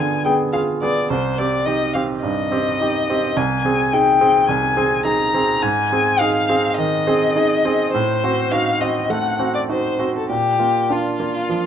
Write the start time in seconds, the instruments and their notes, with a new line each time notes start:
Already playing: grand piano G2 B3 F4 G#4, violin G#5
0.00 grand piano D3
0.25 grand piano B3 G#4, violin G5
0.53 grand piano F4 G#4, violin F5
0.82 grand piano B3 G#4, violin D5
1.10 grand piano C2, violin C5
1.38 grand piano C4 G4, violin D5
1.66 grand piano D#4 G4, violin D#5
1.94 grand piano C4 G4, violin F5
2.23 grand piano G2, violin D#5
2.51 grand piano C4 G4
2.81 grand piano D#4 G4
3.10 grand piano C4 G4
3.37 grand piano C2, violin G#5
3.65 grand piano C4 G#4
3.93 grand piano D#4 G#4, violin G5
4.21 grand piano C4 G#4
4.49 grand piano C2, violin G#5
4.77 grand piano C4 G#4
5.05 grand piano D#4 G#4, violin A#5
5.34 grand piano C4 G#4
5.62 grand piano G#2, violin G#5
5.92 grand piano C4 G#4
6.20 grand piano D#4 G#4, violin F5
6.49 grand piano C4 G#4
6.70 violin F5
6.77 grand piano D#3, violin D#5
7.07 grand piano C4 G#4
7.36 grand piano D#4 G#4
7.65 grand piano C4 G#4
7.92 grand piano A2, violin C5
8.24 grand piano C4 F#4
8.52 grand piano D#4 F#4, violin F5
8.81 grand piano C4 F#4, violin D#5
9.10 grand piano A3, violin F#5
9.39 grand piano C4 F#4
9.55 violin D5
9.69 grand piano D#4 F#4, violin C5
9.99 grand piano C4 F#4
10.16 violin A4
10.29 grand piano A#2, violin G4
10.59 grand piano A#3 F4
10.90 grand piano D4 F4, violin F4
11.20 grand piano A#3 F4
11.49 grand piano F3